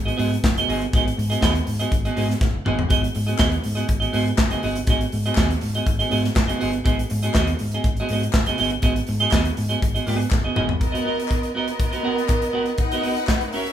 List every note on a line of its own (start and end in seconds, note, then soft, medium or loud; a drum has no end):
0.00 0.12 G#1 medium
0.05 0.16 B3 soft
0.05 0.16 F#4 medium
0.05 0.17 G#4 medium
0.05 0.17 D#5 medium
0.05 closed hi-hat soft
0.17 0.36 G#2 loud
0.17 0.35 B3 medium
0.17 0.32 F#4 medium
0.17 0.32 G#4 medium
0.17 0.31 D#5 medium
0.17 open hi-hat medium
0.32 muted clean electric guitar stroke soft
0.32 closed hi-hat soft
0.44 0.61 F#1 medium
0.44 muted clean electric guitar stroke soft
0.44 kick loud
0.44 snare loud
0.44 clap loud
0.58 0.67 B3 soft
0.58 0.68 F#4 medium
0.58 0.68 G#4 medium
0.58 0.69 D#5 medium
0.58 closed hi-hat soft
0.68 0.85 G1 loud
0.68 0.86 B3 medium
0.68 0.83 F#4 medium
0.68 0.82 G#4 medium
0.68 0.82 D#5 medium
0.68 open hi-hat medium
0.82 muted clean electric guitar stroke soft
0.82 closed hi-hat soft
0.93 1.10 G#1 loud
0.93 1.11 B3 medium
0.93 1.06 F#4 medium
0.93 1.05 G#4 medium
0.93 1.05 D#5 medium
0.93 kick loud
0.93 closed hi-hat medium
1.06 muted clean electric guitar stroke soft
1.06 closed hi-hat soft
1.17 1.35 G#2 loud
1.17 muted clean electric guitar stroke soft
1.17 open hi-hat medium
1.30 1.40 B3 medium
1.30 1.40 F#4 medium
1.30 1.41 G#4 medium
1.30 1.41 D#5 medium
1.30 closed hi-hat medium
1.41 1.60 D#2 medium
1.41 1.59 B3 medium
1.41 1.54 F#4 medium
1.41 1.54 G#4 medium
1.41 1.53 D#5 medium
1.41 kick loud
1.41 snare loud
1.41 clap medium
1.55 muted clean electric guitar stroke soft
1.55 closed hi-hat soft
1.65 1.84 G#2 medium
1.65 muted clean electric guitar stroke soft
1.65 open hi-hat medium
1.80 1.91 B3 medium
1.80 1.92 F#4 medium
1.80 1.92 G#4 medium
1.80 1.92 D#5 medium
1.80 closed hi-hat soft
1.92 2.09 G#1 loud
1.92 muted clean electric guitar stroke soft
1.92 kick loud
1.92 closed hi-hat medium
2.05 2.15 B3 medium
2.05 2.15 F#4 medium
2.05 2.16 G#4 medium
2.05 2.17 D#5 medium
2.05 closed hi-hat soft
2.16 2.34 G#2 loud
2.16 2.34 B3 medium
2.16 2.29 F#4 medium
2.16 2.29 G#4 medium
2.16 2.28 D#5 medium
2.16 open hi-hat medium
2.29 muted clean electric guitar stroke soft
2.29 snare soft
2.29 closed hi-hat soft
2.40 2.58 F#1 medium
2.40 muted clean electric guitar stroke soft
2.40 kick loud
2.40 snare medium
2.54 muted clean electric guitar stroke soft
2.65 2.84 G1 loud
2.65 2.83 B3 medium
2.65 2.77 F#4 medium
2.65 2.78 G#4 medium
2.65 2.77 D#5 medium
2.65 mid tom medium
2.78 muted clean electric guitar stroke soft
2.78 floor tom medium
2.89 3.08 G#1 loud
2.89 3.07 B3 medium
2.89 3.03 F#4 medium
2.89 3.02 G#4 medium
2.89 3.02 D#5 medium
2.89 kick loud
2.89 closed hi-hat medium
3.03 muted clean electric guitar stroke soft
3.03 closed hi-hat soft
3.15 3.33 G#2 medium
3.15 muted clean electric guitar stroke soft
3.15 open hi-hat medium
3.26 3.37 B3 soft
3.26 3.37 F#4 medium
3.26 3.37 G#4 medium
3.26 3.38 D#5 medium
3.26 closed hi-hat soft
3.38 3.57 D#2 medium
3.38 3.56 B3 medium
3.38 3.50 F#4 medium
3.38 3.50 G#4 medium
3.38 3.49 D#5 loud
3.38 kick loud
3.38 snare medium
3.38 clap medium
3.51 muted clean electric guitar stroke soft
3.51 closed hi-hat soft
3.62 3.82 G#2 medium
3.62 muted clean electric guitar stroke soft
3.62 open hi-hat medium
3.75 3.87 B3 medium
3.75 3.86 F#4 medium
3.75 3.87 G#4 medium
3.75 3.88 D#5 medium
3.75 closed hi-hat soft
3.88 4.06 G#1 loud
3.88 muted clean electric guitar stroke soft
3.88 kick medium
3.88 closed hi-hat medium
4.00 4.12 B3 soft
4.00 4.12 F#4 medium
4.00 4.13 G#4 medium
4.00 4.13 D#5 medium
4.00 closed hi-hat soft
4.13 4.31 G#2 loud
4.13 4.31 B3 medium
4.13 4.26 F#4 medium
4.13 4.26 G#4 medium
4.13 4.25 D#5 medium
4.13 open hi-hat medium
4.26 muted clean electric guitar stroke soft
4.26 closed hi-hat soft
4.38 4.55 F#1 loud
4.38 muted clean electric guitar stroke soft
4.38 kick loud
4.38 snare loud
4.38 clap loud
4.51 4.61 B3 soft
4.51 4.62 F#4 medium
4.51 4.62 G#4 medium
4.51 4.63 D#5 medium
4.51 closed hi-hat soft
4.62 4.80 G1 loud
4.62 4.80 B3 medium
4.62 4.78 F#4 medium
4.62 4.77 G#4 medium
4.62 4.77 D#5 medium
4.62 open hi-hat medium
4.75 muted clean electric guitar stroke soft
4.75 closed hi-hat soft
4.87 5.05 G#1 loud
4.87 5.05 B3 medium
4.87 5.03 F#4 medium
4.87 5.02 G#4 medium
4.87 5.01 D#5 medium
4.87 kick loud
4.87 closed hi-hat medium
5.01 muted clean electric guitar stroke soft
5.01 closed hi-hat soft
5.12 5.30 G#2 medium
5.12 muted clean electric guitar stroke soft
5.12 open hi-hat medium
5.26 5.36 B3 medium
5.26 5.36 F#4 medium
5.26 5.37 G#4 medium
5.26 5.37 D#5 medium
5.26 closed hi-hat soft
5.35 5.55 D#2 medium
5.35 5.54 B3 medium
5.35 5.49 F#4 medium
5.35 kick loud
5.35 snare loud
5.35 clap loud
5.38 5.48 G#4 medium
5.38 5.47 D#5 medium
5.38 clap medium
5.48 muted clean electric guitar stroke soft
5.48 closed hi-hat soft
5.61 5.80 G#2 medium
5.61 muted clean electric guitar stroke soft
5.61 open hi-hat medium
5.74 5.86 B3 medium
5.74 5.86 F#4 soft
5.74 5.86 G#4 medium
5.74 5.87 D#5 medium
5.74 closed hi-hat soft
5.87 6.04 G#1 medium
5.87 muted clean electric guitar stroke soft
5.87 kick loud
5.87 closed hi-hat medium
5.99 6.08 B3 soft
5.99 6.10 F#4 medium
5.99 6.10 G#4 medium
5.99 6.10 D#5 medium
5.99 closed hi-hat soft
6.10 6.29 G#2 loud
6.10 6.28 B3 medium
6.10 6.23 F#4 medium
6.10 6.22 G#4 medium
6.10 6.22 D#5 medium
6.10 open hi-hat medium
6.23 muted clean electric guitar stroke soft
6.23 snare soft
6.23 closed hi-hat soft
6.35 6.53 F#1 medium
6.35 muted clean electric guitar stroke soft
6.35 kick loud
6.35 snare loud
6.35 clap medium
6.35 clap loud
6.47 6.58 B3 medium
6.47 6.59 F#4 medium
6.47 6.60 G#4 medium
6.47 6.60 D#5 medium
6.47 closed hi-hat medium
6.59 6.79 G1 loud
6.59 6.77 B3 medium
6.59 6.72 F#4 medium
6.59 6.72 G#4 medium
6.59 6.72 D#5 medium
6.59 open hi-hat medium
6.73 muted clean electric guitar stroke soft
6.73 closed hi-hat soft
6.84 7.03 G#1 loud
6.84 7.02 B3 medium
6.84 6.98 F#4 medium
6.84 6.98 G#4 medium
6.84 6.97 D#5 medium
6.84 kick loud
6.84 closed hi-hat medium
6.98 muted clean electric guitar stroke soft
6.98 closed hi-hat soft
7.10 7.28 G#2 loud
7.10 muted clean electric guitar stroke soft
7.10 open hi-hat medium
7.23 7.34 B3 soft
7.23 7.34 F#4 medium
7.23 7.34 G#4 medium
7.23 7.35 D#5 medium
7.23 closed hi-hat medium
7.34 7.52 D#2 medium
7.34 7.52 B3 medium
7.34 7.49 F#4 medium
7.34 7.49 G#4 medium
7.34 7.48 D#5 medium
7.34 kick loud
7.34 snare loud
7.34 clap medium
7.47 muted clean electric guitar stroke soft
7.47 closed hi-hat soft
7.59 7.77 G#2 medium
7.59 muted clean electric guitar stroke soft
7.59 open hi-hat medium
7.72 7.85 B3 soft
7.72 7.86 F#4 soft
7.72 7.86 G#4 medium
7.72 7.86 D#5 medium
7.72 closed hi-hat soft
7.84 8.01 G#1 medium
7.84 muted clean electric guitar stroke soft
7.84 kick loud
7.84 closed hi-hat medium
7.97 8.10 F#4 medium
7.97 8.11 G#4 medium
7.97 8.12 D#5 medium
7.97 closed hi-hat soft
8.01 8.10 B3 medium
8.09 8.27 G#2 loud
8.09 8.24 B3 medium
8.09 8.23 F#4 medium
8.09 8.23 G#4 medium
8.09 open hi-hat medium
8.13 8.22 D#5 medium
8.23 muted clean electric guitar stroke soft
8.23 closed hi-hat soft
8.33 8.51 F#1 medium
8.33 muted clean electric guitar stroke soft
8.33 kick loud
8.33 snare loud
8.33 clap medium
8.33 clap loud
8.46 8.56 B3 medium
8.46 8.57 F#4 medium
8.46 8.58 G#4 medium
8.46 8.58 D#5 medium
8.46 closed hi-hat medium
8.58 8.76 G1 loud
8.58 8.75 B3 medium
8.58 8.71 F#4 medium
8.58 8.70 G#4 medium
8.58 8.70 D#5 medium
8.58 open hi-hat medium
8.70 muted clean electric guitar stroke soft
8.70 closed hi-hat soft
8.82 9.00 G#1 loud
8.82 9.00 B3 medium
8.82 8.95 F#4 medium
8.82 8.94 G#4 medium
8.82 8.94 D#5 medium
8.82 kick loud
8.82 closed hi-hat medium
8.95 muted clean electric guitar stroke soft
8.95 closed hi-hat medium
9.07 9.25 G#2 loud
9.07 muted clean electric guitar stroke soft
9.07 open hi-hat medium
9.20 9.31 B3 soft
9.20 9.31 F#4 medium
9.20 9.31 G#4 medium
9.20 9.32 D#5 medium
9.20 closed hi-hat soft
9.31 9.50 D#2 medium
9.31 9.49 B3 medium
9.31 9.44 F#4 medium
9.31 9.44 G#4 loud
9.31 kick loud
9.31 snare loud
9.31 clap medium
9.33 9.43 D#5 loud
9.33 clap medium
9.44 muted clean electric guitar stroke soft
9.44 closed hi-hat soft
9.57 9.75 G#2 medium
9.57 muted clean electric guitar stroke soft
9.57 open hi-hat medium
9.69 9.80 B3 medium
9.69 9.80 F#4 medium
9.69 9.81 G#4 medium
9.69 9.82 D#5 medium
9.69 closed hi-hat soft
9.81 9.99 G#1 medium
9.81 muted clean electric guitar stroke soft
9.81 kick medium
9.81 closed hi-hat medium
9.95 10.05 B3 soft
9.95 10.06 F#4 soft
9.95 10.07 G#4 soft
9.95 10.07 D#5 medium
9.95 closed hi-hat soft
10.07 10.24 G#2 loud
10.07 10.27 B3 medium
10.07 10.19 F#4 medium
10.07 10.19 G#4 medium
10.07 10.18 D#5 medium
10.07 open hi-hat medium
10.19 muted clean electric guitar stroke soft
10.19 closed hi-hat soft
10.30 10.49 F#1 medium
10.30 muted clean electric guitar stroke soft
10.30 kick loud
10.30 snare medium
10.30 clap medium
10.44 10.54 B3 medium
10.44 10.55 F#4 medium
10.44 10.55 G#4 medium
10.44 10.55 D#5 medium
10.55 10.74 G1 medium
10.55 10.73 B3 medium
10.55 10.69 F#4 medium
10.55 10.68 G#4 medium
10.55 10.67 D#5 medium
10.55 mid tom medium
10.68 muted clean electric guitar stroke soft
10.68 floor tom medium
10.80 11.53 B3 medium
10.80 11.53 A#4 medium
10.80 11.54 D#5 medium
10.80 muted clean electric guitar stroke soft
10.80 kick medium
10.80 closed hi-hat medium
10.92 11.04 B3 medium
10.92 11.04 F#4 medium
10.92 11.05 A#4 medium
10.92 11.05 D#5 medium
10.92 closed hi-hat soft
11.05 11.19 B3 medium
11.05 11.19 F#4 medium
11.05 11.18 A#4 medium
11.05 11.18 D#5 medium
11.19 muted clean electric guitar stroke soft
11.19 closed hi-hat soft
11.28 kick medium
11.28 clap medium
11.28 closed hi-hat medium
11.43 muted clean electric guitar stroke soft
11.43 closed hi-hat soft
11.54 12.76 B3 medium
11.54 11.72 B3 medium
11.54 11.69 F#4 medium
11.54 12.76 A#4 medium
11.54 11.69 A#4 medium
11.54 12.76 D#5 medium
11.54 11.68 D#5 medium
11.68 muted clean electric guitar stroke soft
11.68 closed hi-hat soft
11.79 muted clean electric guitar stroke soft
11.79 kick medium
11.79 closed hi-hat medium
11.92 12.02 B3 soft
11.92 12.02 F#4 medium
11.92 12.03 A#4 medium
11.92 12.04 D#5 medium
11.92 closed hi-hat soft
12.03 12.21 B3 medium
12.03 12.17 F#4 medium
12.03 12.17 A#4 medium
12.03 12.17 F#5 medium
12.17 muted clean electric guitar stroke soft
12.17 closed hi-hat soft
12.29 muted clean electric guitar stroke soft
12.29 kick loud
12.29 clap medium
12.29 closed hi-hat medium
12.42 muted clean electric guitar stroke soft
12.42 closed hi-hat soft
12.53 12.71 B3 medium
12.53 12.66 F#4 medium
12.53 12.65 A#4 medium
12.53 12.65 F#5 medium
12.66 muted clean electric guitar stroke soft
12.66 closed hi-hat soft
12.78 13.52 D#4 medium
12.78 13.52 B4 medium
12.78 13.52 F#5 medium
12.78 muted clean electric guitar stroke soft
12.78 kick loud
12.78 closed hi-hat medium
12.92 13.02 B3 medium
12.92 13.03 F#4 medium
12.92 13.03 A#4 medium
12.92 13.04 D#5 medium
12.92 closed hi-hat soft
13.03 13.17 B3 medium
13.03 13.18 F#4 medium
13.03 13.18 A#4 medium
13.03 13.16 D#5 medium
13.03 open hi-hat medium
13.17 muted clean electric guitar stroke soft
13.17 closed hi-hat soft
13.27 kick loud
13.27 snare medium
13.27 clap medium
13.29 clap medium
13.41 muted clean electric guitar stroke soft
13.41 closed hi-hat soft
13.52 13.72 C#4 medium
13.52 13.71 C#4 medium
13.52 13.68 F#4 medium
13.52 13.72 A#4 medium
13.52 13.67 A#4 medium
13.52 13.72 E5 medium
13.52 13.66 E5 medium
13.52 open hi-hat medium
13.66 muted clean electric guitar stroke soft
13.66 closed hi-hat soft